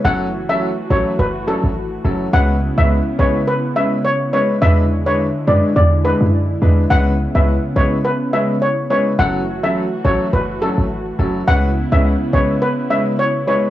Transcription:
0.04 F#1 E3 F#3 A3 C#4 E4 F#4 A4 F#5
0.49 F#3 C#4 E4 A4 E5
0.90 A1 F#3 C#4 E4 A4 C#5
1.19 F#1 B4
1.47 F#3 C#4 E4 A4
1.64 G#1
2.04 F#1 F#3 C#4 E4 A4
2.33 C#2 C#3 G#3 B3 C#4 E4 B4 F#5
2.78 C#2 G#3 C#4 E4 B4 E5
3.19 B1 G#3 C#4 E4 B4 C#5
3.48 B4
3.76 G#3 C#4 E4 B4 E5
4.05 C#5
4.33 G#3 C#4 E4 B4 C#5
4.62 E2 D3 G#3 D4 E4 B4 E5
5.06 G#3 D4 E4 B4 C#5
5.47 F#2 G#3 D4 E4 B4 D5
5.76 E2 D5
6.04 G#3 D4 E4 B4
6.21 F#2
6.62 E2 G#3 D4 E4 B4
6.90 C#2 C#3 G#3 B3 C#4 E4 B4 F#5
7.35 C#2 G#3 C#4 E4 B4 E5
7.76 B1 G#3 C#4 E4 B4 C#5
8.05 B4
8.33 G#3 C#4 E4 B4 E5
8.62 C#5
8.90 G#3 C#4 E4 B4 C#5
9.19 F#1 E3 F#3 A3 C#4 E4 F#4 A4 F#5
9.63 F#3 C#4 E4 A4 E5
10.04 A1 F#3 C#4 E4 A4 C#5
10.33 F#1 B4
10.62 F#3 C#4 E4 A4
10.78 G#1
11.19 F#1 F#3 C#4 E4 A4
11.47 C#2 C#3 G#3 B3 C#4 E4 B4 F#5
11.92 C#2 G#3 C#4 E4 B4 E5
12.33 B1 G#3 C#4 E4 B4 C#5
12.62 B4
12.90 G#3 C#4 E4 B4 E5
13.19 C#5
13.47 G#3 C#4 E4 B4 C#5

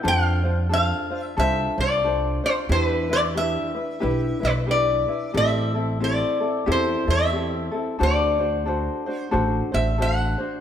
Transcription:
0.03 F2 D4 F4 A4 C5
0.08 F5
0.44 D4 F4 C5
0.69 D4 F4 A4 C5
0.73 F5
1.10 D4 F4 C5
1.20 E5
1.37 C2 D4 F4 A4 C5 E5
1.78 C2 D4 F4 C5 D5
2.04 D4 F4 A4 C5
2.44 D4 F4 C5
2.69 E2 D4 E4 G4 B4 C5
2.83 B4
3.09 D4 E4 B4 D5
3.35 D4 E4 G4 B4 E5
3.74 D4 E4 B4
4.00 B1 D4 E4 G4 B4
4.40 B1 D4 E4 B4
4.45 B4
4.66 D4 E4 G4 B4
4.71 D5
5.08 D4 E4 B4
5.34 A1 C4 E4 G4 A4 E5
5.74 C4 E4 A4
6.00 C4 E4 G4 A4 D5
6.40 C4 E4 A4
6.66 E2 C4 E4 G4 A4
6.72 C5
7.07 E2 C4 E4 A4 E5
7.32 C4 E4 G4 A4
7.71 C4 E4 A4
7.99 D2 D4 F#4 A4 C5
8.03 D5
8.39 D4 F#4 C5
8.66 D4 F#4 A4 C5
9.06 D4 F#4 C5
9.20 C5
9.31 A1 D4 F#4 A4 C5
9.72 A1 D4 F#4 C5 E5
9.98 D4 F#4 A4 C5
10.02 F#5
10.38 D4 F#4 C5

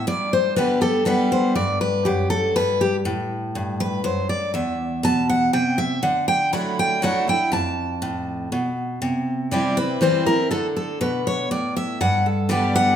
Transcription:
0.07 G2 D5
0.33 C5
0.56 D3 G3 B3 G4 B4
0.81 B3 G4 A4
1.05 D3 G3 B3 G4 B4
1.32 C5
1.55 G2 D5
1.81 B4
2.05 F#2 G4
2.30 A4
2.56 G2 B4
2.81 G4
3.05 A2
3.55 G2
3.80 B4
4.04 F#2 C5
4.29 D5
4.54 E2 E5
5.03 B2 A5
5.30 F#5
5.53 C3 G5
5.78 E5
6.03 D3 F#5
6.28 G5
6.53 F#3 A3 D4 E4 B5
6.79 G5
7.02 F#3 A3 D4 E4 F#5
7.28 D4 E4 G5
7.52 F2 A5
8.02 A2
8.52 B2
9.02 C3
9.51 E3 G3 C4 E4 D5
9.77 C4 E4 B4
10.01 E3 G3 C4 E4 C5
10.26 C4 E4 A#4
10.51 D3 A4
10.77 A4
11.01 B2 B4
11.27 C#5
11.51 A2 D5
11.77 E5
12.01 G2 F#5
12.26 A4
12.49 D3 G3 B3 G4 D5
12.76 F#5

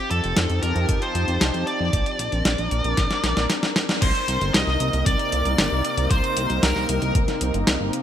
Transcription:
Already playing: F3 C4 D#4 G4 A5
0.11 F2 A4, closed hi-hat
0.24 F1, closed hi-hat
0.36 F2, snare, closed hi-hat
0.50 F2, closed hi-hat
0.63 F2 A#4, closed hi-hat
0.76 F2, closed hi-hat
0.89 F2, kick, closed hi-hat
1.02 C5, closed hi-hat
1.15 F2, closed hi-hat
1.28 F2, closed hi-hat
1.41 C2, snare, closed hi-hat
1.54 F2, closed hi-hat
1.67 D5, closed hi-hat
1.80 F2
1.93 A#1 D4 A#4, kick, closed hi-hat
2.06 closed hi-hat
2.19 A#1, closed hi-hat
2.32 A#1, closed hi-hat
2.45 A#1, snare, closed hi-hat
2.58 A#1, closed hi-hat
2.71 A#1, closed hi-hat
2.84 A#1, closed hi-hat
2.97 A#1, kick, snare, closed hi-hat
3.11 snare, closed hi-hat
3.23 A#1, snare, closed hi-hat
3.37 A#1, snare, closed hi-hat
3.50 snare, closed hi-hat
3.63 snare, closed hi-hat
3.76 snare, closed hi-hat
3.89 snare, closed hi-hat
4.02 C2 C3 A#3 C4 D#4 A#4 C5 C6, kick, closed hi-hat, crash
4.15 closed hi-hat
4.28 C2, closed hi-hat
4.41 G1, closed hi-hat
4.54 C2 D#5 D#6, snare, closed hi-hat
4.67 C2, snare
4.80 C2, closed hi-hat
4.93 C2, closed hi-hat
5.06 C2 D5 D6, kick, closed hi-hat
5.19 closed hi-hat
5.32 C2, closed hi-hat
5.45 C2, closed hi-hat
5.58 G1, snare, closed hi-hat
5.72 C2
5.85 closed hi-hat
5.97 C2, closed hi-hat
6.11 C2 C5 C6, kick, closed hi-hat
6.24 closed hi-hat
6.37 C2, closed hi-hat
6.50 C2, closed hi-hat
6.63 C2 A#4 A#5, snare, closed hi-hat
6.76 C2, snare
6.89 C2, closed hi-hat
7.02 C2, closed hi-hat
7.15 C2, kick, closed hi-hat
7.28 snare, closed hi-hat
7.41 C2, closed hi-hat
7.54 G1, closed hi-hat
7.67 C2, snare, closed hi-hat
7.80 G1
7.93 closed hi-hat

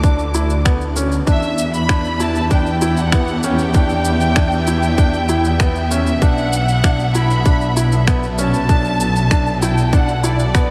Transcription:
Already playing: D2 D3 A3 F#4 A4 D6
0.03 D4, kick, shaker
0.19 shaker
0.34 E4, shaker
0.50 shaker
0.65 B3, finger snap, kick, shaker
0.81 shaker
0.96 C#4, shaker
1.12 shaker
1.27 E2 E3 D4 E5, kick, shaker
1.43 shaker
1.58 shaker
1.74 B5, shaker
1.89 B3 D4, finger snap, kick, shaker
2.05 shaker
2.09 G4 E5
2.20 E4 A5, shaker
2.35 shaker
2.51 D4 G5, kick, shaker
2.66 shaker
2.81 E4, shaker
2.97 F#5, shaker
3.12 B3, finger snap, kick, shaker
3.28 shaker
3.43 C#4 G5, shaker
3.59 shaker
3.74 D4, kick, shaker
3.89 shaker
4.05 shaker
4.20 shaker
4.36 D4, finger snap, kick, shaker
4.52 shaker
4.67 E4, shaker
4.83 shaker
4.98 D4, kick, shaker
5.13 shaker
5.29 E4, shaker
5.45 shaker
5.60 B3, finger snap, kick, shaker
5.75 shaker
5.91 C#4 E5, shaker
6.07 shaker
6.22 B1 B2 D4 F#5, kick, shaker
6.38 shaker
6.53 shaker
6.68 shaker
6.84 D4, finger snap, kick, shaker
6.99 shaker
7.09 A4
7.15 E4 B5, shaker
7.30 shaker
7.45 D4, kick, shaker
7.61 shaker
7.77 E4, shaker
7.92 shaker
8.07 B3, finger snap, kick, shaker
8.23 shaker
8.38 C#4 A5, shaker
8.54 shaker
8.69 D4, kick, shaker
8.85 shaker
9.00 shaker
9.16 shaker
9.31 D4, finger snap, kick, shaker
9.47 shaker
9.62 E4 G5, shaker
9.78 shaker
9.93 D4 F#5, kick, shaker
10.08 shaker
10.24 E4 D5, shaker
10.39 shaker
10.55 B3, finger snap, kick, shaker

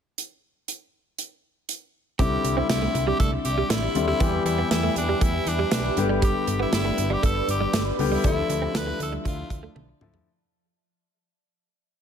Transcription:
0.18 closed hi-hat
0.68 closed hi-hat
1.19 closed hi-hat
1.69 closed hi-hat
2.19 C2 D3 G3 C4 E4 G4 D5 E5 C6, kick, closed hi-hat
2.44 C2, muted clean electric guitar stroke, closed hi-hat
2.57 C4 E4
2.69 C2 E4, snare, closed hi-hat
2.82 A3
2.95 C2, muted clean electric guitar stroke, closed hi-hat
3.07 G3 G4
3.19 C2 A3 A4, kick, closed hi-hat
3.33 muted clean electric guitar stroke
3.45 C2 G4, closed hi-hat
3.58 G3
3.70 A1 A3 E4, snare, closed hi-hat
3.82 muted clean electric guitar stroke
3.95 D#2 D3 G3 C4 E4, closed hi-hat
4.07 G3 E4
4.20 E2 E3 G3 B3 G4 B4 E5 B5, kick, closed hi-hat
4.45 E2 E4, muted clean electric guitar stroke, closed hi-hat
4.58 B3
4.71 E2 E4, snare, closed hi-hat
4.83 A3
4.96 E2 D4, muted clean electric guitar stroke, closed hi-hat
5.09 G3
5.21 E2 A3 E4, kick, closed hi-hat
5.34 muted clean electric guitar stroke
5.46 E2 D4, closed hi-hat
5.59 G3
5.71 B1 A3 D4, snare, closed hi-hat
5.84 muted clean electric guitar stroke
5.97 G1 D3 G3 B3 G4 D5, closed hi-hat
6.09 G3
6.22 G3 G4, kick, closed hi-hat
6.47 G1, muted clean electric guitar stroke, closed hi-hat
6.59 B3 E4
6.73 G1 E4, snare, closed hi-hat
6.85 A3
6.98 G1, muted clean electric guitar stroke, closed hi-hat
7.10 G3 G4
7.23 G1 A3 A4, kick, closed hi-hat
7.35 muted clean electric guitar stroke
7.48 G1 G4, closed hi-hat
7.61 G3
7.73 G1 A3, snare, closed hi-hat
7.86 muted clean electric guitar stroke
7.99 C#2 D3 G3 B3 G4, open hi-hat
8.12 G3 E4
8.24 D2 D3 F3 A3 D4 E4 E5 A5, kick, closed hi-hat
8.49 D2, muted clean electric guitar stroke, closed hi-hat
8.62 C4
8.74 D2 B4, snare, closed hi-hat
8.87 A3
9.00 D2 A4, muted clean electric guitar stroke, closed hi-hat
9.12 G3
9.25 D2 F3 F4, kick, closed hi-hat
9.38 muted clean electric guitar stroke
9.50 D2, kick, closed hi-hat
9.63 A3
9.76 B1 A3, high tom
9.89 muted clean electric guitar stroke
10.01 C#2 D3 F3 A3 E4, mid tom
10.14 G3, floor tom

